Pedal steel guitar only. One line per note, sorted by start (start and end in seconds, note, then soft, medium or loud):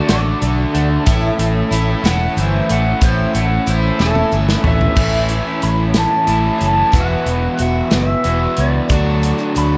0.09 0.41 D5 loud
2.06 2.37 F#5 loud
2.38 2.69 C5 medium
2.72 3.02 F#5 loud
3.04 3.35 C5 loud
3.36 3.67 F#5 medium
3.70 4.01 C5 medium
4.01 4.32 A4 loud
4.68 5.60 E5 loud
5.63 5.97 B5 medium
5.98 6.64 A5 loud
6.66 6.97 A5 medium
6.96 7.61 F#5 loud
7.62 7.91 F#5 medium
7.97 8.62 E5 medium
8.60 9.60 D5 medium
9.58 9.78 B5 medium